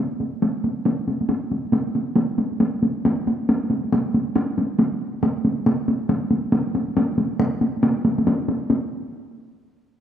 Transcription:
0.12 taiko high soft
0.20 taiko high soft
0.33 taiko high soft
0.42 taiko high medium
0.55 taiko high soft
0.64 taiko high soft
0.77 taiko high soft
0.86 taiko high medium
0.99 taiko high soft
1.08 taiko high medium
1.21 taiko high soft
1.29 taiko high medium
1.43 taiko high soft
1.51 taiko high soft
1.65 taiko high soft
1.73 taiko high medium
1.86 taiko high soft
1.95 taiko high medium
2.08 taiko high soft
2.16 taiko high medium
2.30 taiko high soft
2.38 taiko high medium
2.52 taiko high soft
2.60 taiko high medium
2.74 taiko high soft
2.83 taiko high medium
3.05 taiko high medium
3.19 taiko high soft
3.27 taiko high medium
3.40 taiko high soft
3.49 taiko high medium
3.62 taiko high soft
3.71 taiko high medium
3.84 taiko high soft
3.92 taiko high medium
4.06 taiko high soft
4.14 taiko high medium
4.28 taiko high soft
4.36 taiko high medium
4.50 taiko high soft
4.58 taiko high medium
4.79 taiko high medium
4.92 taiko high soft
5.14 taiko high soft
5.23 taiko high medium
5.36 taiko high soft
5.45 taiko high medium
5.58 taiko high soft
5.66 taiko high medium
5.80 taiko high soft
5.88 taiko high medium
6.01 taiko high soft
6.09 taiko high medium
6.22 taiko high soft
6.31 taiko high medium
6.52 taiko high medium
6.66 taiko high soft
6.75 taiko high medium
6.88 taiko high soft
6.97 taiko high medium
7.09 taiko high soft
7.18 taiko high medium
7.31 taiko high soft
7.40 taiko high medium
7.53 taiko high soft
7.61 taiko high medium
7.75 taiko high soft
7.83 taiko high medium
7.96 taiko high soft
8.05 taiko high medium
8.18 taiko high medium
8.27 taiko high medium
8.40 taiko high soft
8.49 taiko high medium
8.62 taiko high soft
8.70 taiko high medium

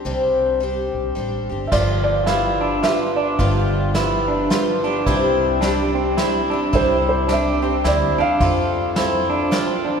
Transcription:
0.05 0.90 C2 medium
0.05 0.61 C3 medium
0.05 0.59 G3 medium
0.05 0.60 C4 medium
0.05 0.62 D4 medium
0.05 0.62 G4 medium
0.60 1.14 G3 soft
0.60 1.15 C4 soft
0.60 1.17 D4 medium
0.60 1.17 G4 medium
0.94 1.14 B1 medium
1.15 1.47 A1 medium
1.15 1.49 G3 soft
1.15 1.50 C4 soft
1.15 1.50 D4 soft
1.15 1.48 G4 medium
1.50 1.70 G1 medium
1.50 1.73 C4 soft
1.50 1.73 D4 soft
1.50 1.72 G4 soft
1.67 1.73 E5 soft
1.72 2.80 G1 medium
1.72 2.28 G2 medium
1.72 2.28 D3 medium
1.72 2.26 F3 medium
1.72 2.27 B3 medium
1.72 2.26 F4 medium
1.72 2.28 F4 medium
1.72 2.29 G4 medium
1.72 2.02 D5 medium
1.72 kick medium
1.72 crash medium
2.04 2.25 D5 medium
2.26 2.82 F3 soft
2.26 2.83 B3 medium
2.26 2.60 E4 medium
2.26 2.84 F4 medium
2.26 2.86 G4 medium
2.26 2.85 F5 medium
2.26 snare medium
2.26 ride soft
2.61 2.83 D4 medium
2.83 3.39 F3 soft
2.83 3.38 B3 medium
2.83 3.16 F4 medium
2.83 3.39 F4 medium
2.83 3.40 G4 medium
2.83 2.91 E5 medium
2.83 snare medium
2.83 ride soft
3.16 3.39 D4 medium
3.16 3.68 D5 medium
3.39 4.47 G1 loud
3.39 3.95 G2 medium
3.39 3.95 D3 medium
3.39 3.93 F3 medium
3.39 3.95 B3 medium
3.39 3.94 F4 medium
3.39 3.95 F4 medium
3.39 3.97 G4 medium
3.39 kick medium
3.39 ride soft
3.94 4.49 F3 soft
3.94 4.50 B3 medium
3.94 4.28 E4 medium
3.94 4.51 F4 medium
3.94 4.53 G4 medium
3.94 snare medium
3.94 ride soft
4.28 4.50 D4 medium
4.50 4.84 F3 medium
4.50 4.85 B3 medium
4.50 4.84 F4 medium
4.50 4.83 G4 medium
4.50 snare medium
4.50 ride soft
4.84 5.07 F3 soft
4.84 5.07 B3 soft
4.84 5.06 D4 medium
4.84 5.07 F4 soft
4.84 5.07 G4 soft
5.06 6.14 C2 medium
5.06 5.62 C3 medium
5.06 5.60 G3 medium
5.06 5.62 C4 medium
5.06 5.62 D4 medium
5.06 5.61 E4 medium
5.06 5.63 G4 medium
5.06 kick medium
5.06 ride soft
5.61 6.17 G3 medium
5.61 6.19 C4 medium
5.61 5.94 D4 medium
5.61 6.18 D4 medium
5.61 6.19 G4 medium
5.61 snare medium
5.61 ride soft
5.95 6.17 C4 medium
6.17 6.52 G3 medium
6.17 6.52 C4 soft
6.17 6.52 D4 medium
6.17 6.51 E4 medium
6.17 6.50 G4 medium
6.17 snare medium
6.17 ride soft
6.50 6.73 D4 medium
6.50 6.73 D4 soft
6.50 6.74 G4 soft
6.55 6.73 C4 soft
6.73 7.81 C2 medium
6.73 7.29 C3 medium
6.73 7.27 G3 medium
6.73 7.29 C4 medium
6.73 7.29 D4 medium
6.73 7.28 E4 medium
6.73 7.30 G4 medium
6.73 7.06 C5 medium
6.73 kick medium
6.73 ride soft
7.09 7.29 C5 medium
7.28 7.63 G3 medium
7.28 7.63 C4 medium
7.28 7.62 D4 medium
7.28 7.63 D4 medium
7.28 7.61 G4 medium
7.28 snare medium
7.28 ride soft
7.33 7.83 E5 medium
7.62 7.85 C4 medium
7.62 7.84 C4 soft
7.62 7.85 D4 soft
7.62 7.85 G4 soft
7.84 8.15 D2 medium
7.84 8.18 G3 soft
7.84 8.19 C4 medium
7.84 8.19 D4 soft
7.84 8.18 E4 medium
7.84 8.17 G4 medium
7.84 8.21 D5 medium
7.84 snare medium
7.84 ride soft
8.18 8.39 E2 medium
8.18 8.41 C4 soft
8.18 8.41 D4 medium
8.18 8.42 D4 soft
8.18 8.41 G4 soft
8.18 8.72 F5 medium
8.40 9.49 F2 medium
8.40 8.95 F3 medium
8.40 8.97 C4 medium
8.40 8.96 F4 medium
8.40 8.97 F4 medium
8.40 8.98 A4 medium
8.40 kick medium
8.40 ride soft
8.96 9.50 F3 medium
8.96 9.52 C4 medium
8.96 9.30 E4 medium
8.96 9.53 F4 medium
8.96 9.54 A4 medium
8.96 snare medium
8.96 ride soft
9.30 9.52 D4 medium
9.51 10.00 F3 medium
9.51 10.00 C4 medium
9.51 9.85 F4 medium
9.51 10.00 F4 medium
9.51 10.00 A4 medium
9.51 snare medium
9.51 ride soft
9.85 10.00 D4 medium

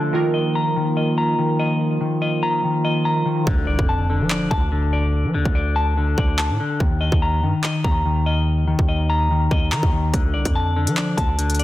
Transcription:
0.00 0.10 D3 medium
0.00 0.13 D3 medium
0.00 0.14 D3 medium
0.00 3.43 F3 medium
0.00 0.10 A3 medium
0.00 0.14 A3 soft
0.00 0.13 F4 medium
0.00 3.43 F4 medium
0.00 0.14 A4 medium
0.00 0.14 D5 medium
0.00 0.14 A5 medium
0.00 downlifter medium
0.13 3.42 D#3 medium
0.13 3.44 D#3 medium
0.13 0.75 D#3 medium
0.13 3.43 A#3 medium
0.13 3.44 A#3 medium
0.13 3.43 F4 medium
0.13 3.43 A#4 medium
0.34 0.96 D#5 medium
0.55 1.17 A#5 medium
0.76 1.37 D#3 medium
0.97 1.58 D#5 medium
1.18 2.42 A#5 medium
1.39 2.00 D#3 medium
1.59 2.21 D#5 medium
2.01 2.63 D#3 medium
2.22 2.83 D#5 medium
2.43 3.04 A#5 medium
2.64 3.24 D#3 medium
2.85 3.47 D#5 medium
3.05 3.47 A#5 medium
3.26 3.47 D#3 medium
3.47 3.69 D2 loud
3.47 4.09 D3 medium
3.47 kick loud
3.47 impact medium
3.67 3.78 C2 loud
3.67 4.29 D5 medium
3.79 4.22 F2 loud
3.79 kick medium
3.89 4.50 A5 medium
4.10 4.71 D3 medium
4.20 4.50 F3 loud
4.30 4.92 D5 medium
4.30 clap loud
4.51 5.26 D2 loud
4.51 5.75 A5 medium
4.51 kick medium
4.72 5.33 D3 medium
4.93 5.54 D5 medium
5.25 5.36 F3 loud
5.34 5.45 D2 loud
5.34 5.96 D3 medium
5.45 6.15 D2 loud
5.45 kick loud
5.55 6.17 D5 medium
5.76 6.37 A5 medium
5.97 6.59 D3 medium
6.18 6.51 D2 loud
6.18 6.80 D5 medium
6.18 kick medium
6.39 6.80 A5 medium
6.39 clap loud
6.50 6.59 A2 loud
6.60 6.81 D3 medium
6.80 7.11 D#2 loud
6.80 7.42 D#3 medium
6.80 kick loud
7.01 7.62 D#5 medium
7.12 7.44 D#2 loud
7.12 kick medium
7.22 7.83 A#5 medium
7.43 7.53 G2 loud
7.43 8.04 D#3 medium
7.64 8.25 D#5 medium
7.64 clap loud
7.84 8.75 D#2 loud
7.84 9.08 A#5 medium
7.84 kick medium
8.05 8.66 D#3 medium
8.26 8.87 D#5 medium
8.68 9.30 D#3 medium
8.79 9.48 D#2 loud
8.79 kick medium
8.88 9.50 D#5 medium
9.10 9.71 A#5 medium
9.31 9.91 D#3 medium
9.51 9.73 D#2 loud
9.51 10.14 D#5 medium
9.51 kick medium
9.72 9.82 D#3 loud
9.72 10.14 A#5 medium
9.72 clap loud
9.83 10.12 D#2 loud
9.83 kick loud
9.92 10.13 D#3 medium
10.14 10.36 D2 loud
10.14 10.75 D3 medium
10.14 kick loud
10.14 closed hi-hat medium
10.34 10.45 C2 loud
10.34 10.95 D5 medium
10.45 10.89 F2 loud
10.45 kick medium
10.45 closed hi-hat medium
10.55 11.16 A5 medium
10.76 11.37 D3 medium
10.87 11.16 F3 medium
10.87 closed hi-hat medium
10.96 11.58 D5 medium
10.96 clap loud
11.17 11.64 D2 loud
11.17 11.64 A5 medium
11.17 kick medium
11.17 closed hi-hat medium
11.39 11.64 D3 medium
11.39 closed hi-hat medium
11.50 closed hi-hat medium
11.55 closed hi-hat medium
11.59 11.64 D5 medium
11.59 closed hi-hat soft

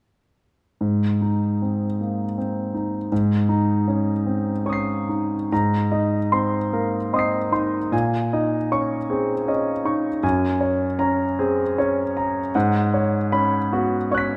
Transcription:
0.81 3.07 G#2 soft
1.22 1.85 D#4 soft
1.62 2.23 C4 soft
2.01 2.38 A#3 soft
2.38 2.97 C4 soft
2.74 3.11 D#4 soft
3.12 5.48 G#2 soft
3.49 4.10 D#4 soft
3.88 4.50 C#4 soft
4.26 4.66 C4 soft
4.66 5.35 C#4 soft
4.66 5.47 C#6 soft
4.66 5.49 D#6 soft
4.73 5.51 C7 soft
5.09 5.51 D#4 soft
5.52 7.89 G#2 soft
5.52 6.17 A#5 soft
5.92 6.57 D#4 soft
5.92 6.57 D#5 soft
6.32 6.97 C4 soft
6.32 6.97 C6 soft
6.73 7.13 A#3 soft
6.73 7.37 A#4 soft
7.13 7.77 C4 soft
7.13 7.77 D#5 soft
7.13 7.51 C6 soft
7.13 7.90 D#6 soft
7.19 7.91 C7 soft
7.52 7.92 D#4 soft
7.52 7.92 C6 soft
7.92 10.19 A#2 soft
7.92 8.56 G#5 soft
8.33 8.96 D#4 soft
8.33 8.96 D#5 soft
8.72 9.33 C#4 soft
8.72 9.33 C#6 soft
9.10 9.48 C4 soft
9.10 9.70 G#4 soft
9.48 10.08 C#4 soft
9.48 10.08 D#5 soft
9.85 10.23 D#4 soft
9.85 10.23 C#6 soft
10.23 12.51 F#2 soft
10.23 10.84 G#5 soft
10.61 11.23 C#5 soft
10.99 11.62 C#4 soft
10.99 11.62 A#5 soft
11.39 11.78 C4 soft
11.39 12.02 G#4 soft
11.78 12.40 C#4 soft
11.78 12.40 C#5 soft
12.17 12.55 A#5 soft
12.55 14.37 G#2 soft
12.55 13.17 F#5 soft
12.94 13.57 C#5 soft
13.32 13.96 C#4 soft
13.32 13.96 B5 soft
13.73 14.11 B3 soft
13.73 14.34 F#4 soft
14.11 14.37 C#4 soft
14.11 14.37 C#5 soft
14.11 14.37 C#6 soft
14.11 14.37 F#6 soft
14.18 14.37 B6 soft

